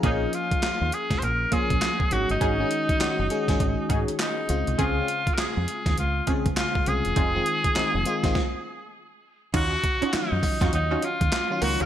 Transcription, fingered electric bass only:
X:1
M:4/4
L:1/16
Q:"Swing 16ths" 1/4=101
K:Ebdor
V:1 name="Fingered electric bass" clef=bass
B,,,2 z3 E,, z D,, B,,,2 z B,,, z2 A,,, =G,,, | A,,,2 z3 G,,, z A,,, A,,, z A,, z3 D,, C,, | D,,2 z3 F,, z E,, D,,2 z D,, z2 C,, =E,,, | F,,,2 z3 F,,, z A,,, z8 |
E,,2 z3 G,, z F,, E,,2 z E,, z2 D,, =D,, |]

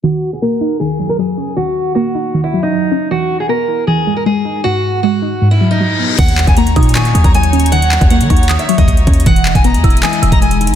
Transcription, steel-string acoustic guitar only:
X:1
M:4/4
L:1/16
Q:1/4=156
K:Ebphr
V:1 name="Steel-string acoustic guitar"
G3 A B4 A3 B A4 | G4 G4- G F2 E4- E | G3 ^G B4 G3 B G4 | G4 G4- G F2 E4- E |
g3 a b4 a3 b a4 | g4 g4- g f2 e4- e | g3 ^g b4 g3 b g4 |]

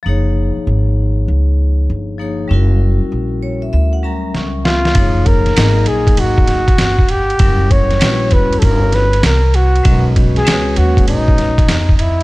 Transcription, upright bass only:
X:1
M:4/4
L:1/16
Q:"Swing 16ths" 1/4=98
K:F#
V:1 name="Upright bass" clef=bass
F,,,3 z G,,,4 C,,4 =G,,,4 | F,,,3 z A,,,4 =D,,4 C,,4 | F,,,4 G,,,2 A,,,2 G,,,4 =G,,,4 | F,,,4 A,,,2 F,,,2 =G,,,4 ^B,,,4 |
B,,,4 C,,2 D,,2 A,,,4 E,,4 |]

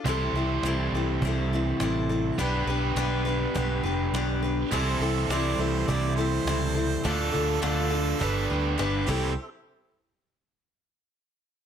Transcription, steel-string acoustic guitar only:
X:1
M:4/4
L:1/8
Q:1/4=103
K:C
V:1 name="Steel-string acoustic guitar"
[C,E,G,CEA] [G,CEA] [C,E,G,CEA] [G,CEA] [G,CEA] [G,CEA] [C,E,G,CEA] [G,CEA] | [B,DGB] [DGB] [B,DGB] [DGB] [B,DGB] [DGB] [B,DGB] [DGB] | [C,E,G,CEA] [G,CEA] [C,E,G,CEA] [G,CEA] [G,CEA] [G,CEA] [C,E,G,CEA] [G,CEA] | [D,A,DFA] [DFA] [D,A,DFA] [DFA] [G,DGB] [DGB] [G,DGB] [C,E,G,CEA] |
z8 |]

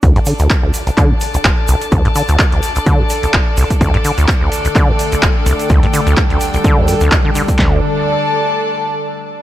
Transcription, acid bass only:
X:1
M:4/4
L:1/16
Q:"Swing 16ths" 1/4=127
K:Cdor
V:1 name="Acid bass" clef=bass
D,, G,, D, D,, z D,, z C,, D, D,, z C,, D,,, z C,, z | D,, G,, D, D,, z D,, z C,, D, D,, z C,, D,,, z C,, z | D,, G,, D, D,, z D,, z C,, D, D,, z C,, D,,, z C,, z | D,, G,, D, D,, z D,, z C,, D, D,, G,, D,, z D, D, z |
D,,2 z12 z2 |]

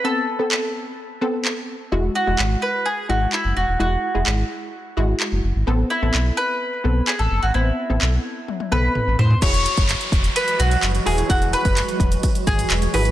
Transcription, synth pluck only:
X:1
M:4/4
L:1/16
Q:1/4=128
K:E
V:1 name="Synth pluck"
[B,=CA]2 z [B,CA]6 z [B,CA]4- [B,CA] z | [G,EF]2 z [G,EF]6 z [G,EF]4- [G,EF] z | [G,EF]2 z [G,EG]6 z [G,EF]4- [G,EF] z | [B,=CA]2 z [B,CA]6 z [B,CA]4- [B,CA] z |
[B,=C=c]2 z [B,CA]6 z [B,CA]4- [B,CA] z | [EFG]6 z8 [EFG]2 | [EFG]6 z8 [EFG]2 |]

